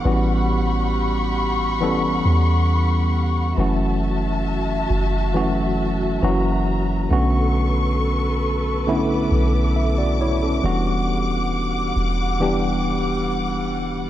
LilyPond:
<<
  \new Staff \with { instrumentName = "String section" } { \time 4/4 \key e \dorian \tempo 4 = 68 << { cis'''1 | a''2. ais''4 | cis'''2 d'''2~ | d'''1 | } \\ { <g fis'' b''>1 | <fis' e''>1 | <a' b'>1 | <g fis''>1 | } >> }
  \new Staff \with { instrumentName = "Tine electric piano" } { \time 4/4 \key e \dorian r1 | r1 | r2. e''16 <fis' d''>16 <e' cis''>16 <cis' a'>16~ | <cis' a'>16 r2. r8. | }
  \new Staff \with { instrumentName = "Tine electric piano" } { \time 4/4 \key e \dorian <e g b cis' fis'>4. r8 <e g b cis' a'>4. r8 | <e fis a cis' fis'>4. r8 <e fis a cis' fis'>4 <e fis ais cis' fis'>4 | <d a b cis' fis'>4. r8 <d a b cis' e'>4. r8 | <e g b d' fis'>4. r8 <e g b d' g'>4. r8 | }
  \new Staff \with { instrumentName = "808-style bass" } { \clef bass \time 4/4 \key e \dorian a,,2~ a,,8 e,4. | fis,,4. fis,,4. fis,,4 | b,,2~ b,,8 b,,4. | e,,4. e,,2~ e,,8 | }
>>